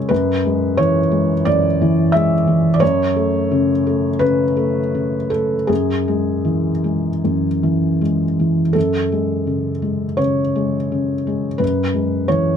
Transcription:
0.00 0.13 C#3 medium
0.00 0.13 G#3 soft
0.00 0.10 C#5 medium
0.09 1.43 F#2 medium
0.09 0.78 B4 medium
0.45 1.00 G#3 soft
0.77 1.33 E3 medium
0.77 1.46 C#5 medium
1.11 1.66 G#3 soft
1.45 2.77 F#2 soft
1.45 2.13 D5 medium
1.82 2.35 E3 medium
2.12 2.68 G#3 medium
2.12 2.74 E5 medium
2.48 2.82 E3 soft
2.74 2.81 D5 medium
2.80 4.18 F#2 medium
2.80 4.21 C#5 medium
3.16 3.72 A3 medium
3.52 4.07 C#3 medium
3.87 4.43 A3 medium
4.19 4.79 C#3 medium
4.19 5.31 B4 medium
4.57 5.16 A3 medium
4.95 5.55 C#3 soft
5.30 5.70 A3 soft
5.30 5.69 A4 medium
5.67 7.20 F#2 medium
5.67 8.00 G#4 medium
6.08 6.70 G#3 soft
6.45 7.08 E3 soft
6.84 7.47 G#3 soft
7.24 8.71 F#2 soft
7.63 8.23 E3 soft
8.01 8.61 G#3 soft
8.40 8.76 E3 soft
8.73 10.16 F#2 soft
8.73 10.19 A4 medium
9.12 9.70 G#3 soft
9.47 10.05 C#3 soft
9.82 10.41 G#3 soft
10.17 10.77 C#3 soft
10.17 11.60 C#5 medium
10.56 11.13 G#3 soft
10.92 11.48 C#3 soft
11.27 11.62 G#3 soft
11.58 12.57 F#2 soft
11.58 12.29 B4 medium
11.94 12.50 G#3 soft
12.28 12.57 E3 soft
12.28 12.57 C#5 medium

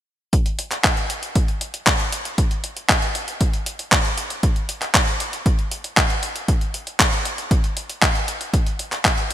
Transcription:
0.33 kick loud
0.33 closed hi-hat medium
0.46 closed hi-hat soft
0.59 closed hi-hat medium
0.71 clap soft
0.71 closed hi-hat soft
0.84 kick loud
0.84 clap loud
0.84 closed hi-hat medium
0.97 closed hi-hat soft
1.10 closed hi-hat medium
1.23 closed hi-hat soft
1.35 kick loud
1.35 closed hi-hat medium
1.48 closed hi-hat soft
1.61 closed hi-hat medium
1.74 closed hi-hat soft
1.87 kick loud
1.87 clap loud
1.87 closed hi-hat medium
2.00 closed hi-hat soft
2.12 closed hi-hat medium
2.25 closed hi-hat medium
2.38 kick loud
2.38 closed hi-hat medium
2.51 closed hi-hat soft
2.64 closed hi-hat medium
2.77 closed hi-hat soft
2.89 kick loud
2.89 clap loud
2.89 closed hi-hat medium
3.02 closed hi-hat soft
3.15 closed hi-hat medium
3.28 closed hi-hat soft
3.41 kick loud
3.41 closed hi-hat medium
3.53 closed hi-hat soft
3.66 closed hi-hat medium
3.79 closed hi-hat soft
3.92 kick loud
3.92 clap loud
3.92 closed hi-hat medium
4.05 closed hi-hat soft
4.18 closed hi-hat medium
4.30 closed hi-hat soft
4.43 kick loud
4.43 closed hi-hat medium
4.56 closed hi-hat soft
4.69 closed hi-hat medium
4.82 clap soft
4.82 closed hi-hat soft
4.95 kick loud
4.95 clap loud
4.95 closed hi-hat medium
5.07 closed hi-hat soft
5.20 closed hi-hat medium
5.33 closed hi-hat soft
5.46 kick loud
5.46 closed hi-hat medium
5.59 closed hi-hat soft
5.71 closed hi-hat medium
5.84 closed hi-hat soft
5.97 kick loud
5.97 clap loud
5.97 closed hi-hat medium
6.10 closed hi-hat soft
6.23 closed hi-hat medium
6.36 closed hi-hat soft
6.48 kick loud
6.48 closed hi-hat medium
6.61 closed hi-hat soft
6.74 closed hi-hat medium
6.87 closed hi-hat soft
7.00 kick loud
7.00 clap loud
7.00 closed hi-hat medium
7.13 closed hi-hat soft
7.25 closed hi-hat medium
7.38 closed hi-hat soft
7.51 kick loud
7.51 closed hi-hat medium
7.64 closed hi-hat soft
7.77 closed hi-hat medium
7.90 closed hi-hat soft
8.02 kick loud
8.02 clap loud
8.02 closed hi-hat medium
8.15 closed hi-hat soft
8.28 closed hi-hat medium
8.41 closed hi-hat soft
8.54 kick loud
8.54 closed hi-hat medium
8.66 closed hi-hat soft
8.79 closed hi-hat medium
8.92 clap soft
8.92 closed hi-hat soft
9.05 kick loud
9.05 clap loud
9.05 closed hi-hat medium
9.18 closed hi-hat soft
9.31 closed hi-hat medium

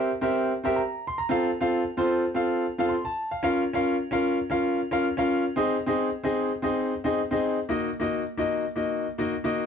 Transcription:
0.00 0.10 A#4 medium
0.00 0.10 E5 medium
0.21 0.51 C4 medium
0.21 0.51 G4 medium
0.21 0.51 A#4 medium
0.21 0.51 E5 medium
0.64 0.79 C4 medium
0.64 0.80 G4 medium
0.64 0.80 A#4 medium
0.64 0.80 E5 medium
0.76 1.05 A#5 medium
1.07 1.18 C6 medium
1.18 1.43 A#5 medium
1.29 1.48 C4 medium
1.29 1.49 F4 medium
1.29 1.49 A4 medium
1.29 1.49 F5 medium
1.60 1.81 C4 medium
1.60 1.81 F4 medium
1.60 1.82 A4 medium
1.60 1.82 F5 medium
1.97 2.23 C4 medium
1.97 2.23 F4 medium
1.97 2.23 A4 medium
1.97 2.23 C5 medium
2.34 2.64 C4 medium
2.34 2.64 F4 medium
2.34 2.64 A4 medium
2.34 2.65 F5 medium
2.78 2.93 C4 medium
2.78 2.93 F4 medium
2.78 2.94 A4 medium
2.78 2.90 F5 medium
2.89 3.04 C6 medium
3.05 3.30 A5 medium
3.31 3.42 F5 medium
3.43 3.62 C#4 medium
3.43 3.62 F4 medium
3.43 3.62 A#4 medium
3.43 3.62 F5 medium
3.73 3.94 C#4 medium
3.73 3.95 F4 medium
3.73 3.95 A#4 medium
3.73 3.95 F5 medium
4.11 4.36 C#4 medium
4.11 4.37 F4 medium
4.11 4.37 A#4 medium
4.11 4.37 F5 medium
4.50 4.78 C#4 medium
4.50 4.79 F4 medium
4.50 4.79 A#4 medium
4.50 4.79 F5 medium
4.91 5.06 C#4 medium
4.91 5.06 F4 medium
4.91 5.07 A#4 medium
4.91 5.07 F5 medium
5.17 5.43 C#4 medium
5.17 5.43 F4 medium
5.17 5.43 A#4 medium
5.17 5.43 F5 medium
5.56 5.75 C4 medium
5.56 5.75 D#4 medium
5.56 5.76 G#4 medium
5.56 5.76 D#5 loud
5.86 6.08 C4 medium
5.86 6.08 D#4 medium
5.86 6.08 G#4 medium
5.86 6.08 D#5 medium
6.23 6.49 C4 medium
6.23 6.49 D#4 medium
6.23 6.50 G#4 medium
6.23 6.50 D#5 medium
6.62 6.91 C4 medium
6.62 6.92 D#4 medium
6.62 6.92 G#4 medium
6.62 6.92 D#5 medium
7.04 7.20 C4 medium
7.04 7.20 D#4 medium
7.04 7.20 G#4 medium
7.04 7.20 D#5 medium
7.31 7.56 C4 medium
7.31 7.57 D#4 medium
7.31 7.57 G#4 medium
7.31 7.57 D#5 medium
7.69 7.88 A#3 medium
7.69 7.89 D#4 medium
7.69 7.89 F#4 medium
7.69 7.89 D#5 medium
8.00 8.21 A#3 medium
8.00 8.21 D#4 medium
8.00 8.22 F#4 medium
8.00 8.22 D#5 loud
8.37 8.63 A#3 medium
8.37 8.63 D#4 medium
8.37 8.64 F#4 medium
8.37 8.64 D#5 medium
8.76 9.05 A#3 medium
8.76 9.05 D#4 medium
8.76 9.05 F#4 medium
8.76 9.05 D#5 medium
9.18 9.34 A#3 medium
9.18 9.33 D#4 medium
9.18 9.34 F#4 medium
9.18 9.34 D#5 medium
9.44 9.66 A#3 medium
9.44 9.66 D#4 medium
9.44 9.66 F#4 medium
9.44 9.66 D#5 medium

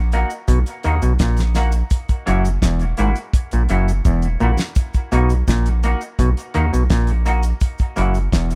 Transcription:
0.00 0.25 A#1 medium
0.12 0.29 A#3 medium
0.12 0.29 D#4 loud
0.12 0.29 F#4 loud
0.12 closed hi-hat medium
0.12 cabasa medium
0.30 cabasa medium
0.48 0.64 B1 loud
0.48 0.59 B2 medium
0.48 kick loud
0.48 closed hi-hat medium
0.48 cabasa medium
0.66 closed hi-hat soft
0.66 cabasa soft
0.83 1.01 D#2 medium
0.83 0.95 D#3 medium
0.83 1.00 A#3 medium
0.83 1.00 D#4 medium
0.83 1.01 F#4 medium
0.83 closed hi-hat medium
0.83 cabasa soft
1.02 1.18 B1 medium
1.02 1.13 B2 medium
1.02 closed hi-hat soft
1.02 cabasa medium
1.19 1.83 A#1 loud
1.19 1.42 A#2 medium
1.19 kick loud
1.19 snare loud
1.19 closed hi-hat medium
1.19 cabasa medium
1.37 snare medium
1.37 closed hi-hat medium
1.37 cabasa medium
1.55 1.71 A#3 medium
1.55 1.72 D#4 medium
1.55 1.72 F#4 medium
1.55 snare medium
1.55 closed hi-hat medium
1.55 cabasa medium
1.72 muted clean electric guitar stroke soft
1.72 closed hi-hat soft
1.72 cabasa medium
1.90 kick loud
1.90 closed hi-hat medium
1.90 cabasa medium
2.09 kick loud
2.09 closed hi-hat medium
2.09 cabasa medium
2.26 2.59 F#1 loud
2.26 2.49 F#2 medium
2.26 2.42 A#3 medium
2.26 2.43 E4 medium
2.26 2.43 F#4 loud
2.26 closed hi-hat medium
2.26 cabasa medium
2.45 closed hi-hat soft
2.45 cabasa medium
2.62 2.94 E1 medium
2.62 2.84 E2 medium
2.62 kick medium
2.62 snare loud
2.62 closed hi-hat loud
2.62 cabasa medium
2.79 closed hi-hat soft
2.79 cabasa medium
2.97 3.14 G#1 medium
2.97 3.10 G#2 medium
2.97 3.14 A#3 medium
2.97 3.14 E4 medium
2.97 3.14 F#4 medium
2.97 closed hi-hat medium
2.97 cabasa medium
3.16 closed hi-hat soft
3.16 cabasa medium
3.34 kick loud
3.34 closed hi-hat loud
3.34 cabasa medium
3.51 3.68 A#1 medium
3.51 3.63 A#2 medium
3.51 closed hi-hat medium
3.51 cabasa medium
3.69 4.01 F#1 loud
3.69 3.92 F#2 medium
3.69 3.85 A#3 medium
3.69 3.86 E4 medium
3.69 3.86 F#4 medium
3.69 closed hi-hat medium
3.69 cabasa soft
3.88 cabasa medium
4.05 4.37 E1 loud
4.05 4.27 E2 medium
4.05 kick loud
4.05 cabasa medium
4.22 cabasa medium
4.40 4.57 A#1 loud
4.40 4.51 A#2 medium
4.40 4.57 A#3 medium
4.40 4.57 E4 medium
4.40 4.57 F#4 medium
4.40 cabasa medium
4.57 snare loud
4.57 cabasa medium
4.75 kick loud
4.75 closed hi-hat medium
4.75 cabasa medium
4.94 kick medium
4.94 closed hi-hat medium
4.94 cabasa medium
5.12 5.43 B1 loud
5.12 5.33 B2 medium
5.12 5.28 A#3 medium
5.12 5.28 D#4 medium
5.12 5.29 F#4 medium
5.12 closed hi-hat medium
5.12 cabasa medium
5.30 closed hi-hat soft
5.30 cabasa medium
5.48 5.95 A#1 medium
5.48 5.69 A#2 medium
5.48 kick loud
5.48 snare loud
5.48 closed hi-hat loud
5.48 cabasa medium
5.66 closed hi-hat soft
5.66 cabasa medium
5.83 5.99 A#3 medium
5.83 6.00 D#4 loud
5.83 6.00 F#4 loud
5.83 closed hi-hat medium
5.83 cabasa medium
6.01 cabasa medium
6.19 6.35 B1 loud
6.19 6.30 B2 medium
6.19 kick loud
6.19 closed hi-hat medium
6.19 cabasa medium
6.37 closed hi-hat medium
6.37 cabasa medium
6.54 6.71 D#2 medium
6.54 6.65 D#3 medium
6.54 6.70 A#3 medium
6.54 6.70 D#4 loud
6.54 6.71 F#4 loud
6.54 closed hi-hat medium
6.54 cabasa soft
6.73 6.88 B1 medium
6.73 6.83 B2 medium
6.73 cabasa medium
6.90 7.53 A#1 medium
6.90 7.11 A#2 medium
6.90 kick loud
6.90 snare loud
6.90 closed hi-hat medium
6.90 cabasa loud
7.07 closed hi-hat medium
7.07 cabasa medium
7.26 7.41 A#3 medium
7.26 7.42 D#4 medium
7.26 7.42 F#4 medium
7.26 closed hi-hat medium
7.26 cabasa medium
7.43 closed hi-hat soft
7.43 cabasa medium
7.61 kick loud
7.61 closed hi-hat loud
7.61 cabasa medium
7.78 kick loud
7.78 closed hi-hat soft
7.78 cabasa medium
7.96 8.29 F#1 medium
7.96 8.18 F#2 medium
7.96 8.12 A#3 loud
7.96 8.13 E4 loud
7.96 8.13 F#4 medium
7.96 closed hi-hat medium
7.96 cabasa medium
8.14 closed hi-hat soft
8.14 cabasa medium
8.32 8.55 E1 loud
8.32 8.54 E2 medium
8.32 kick loud
8.32 snare loud
8.32 closed hi-hat medium
8.32 cabasa medium
8.50 closed hi-hat soft
8.50 cabasa medium

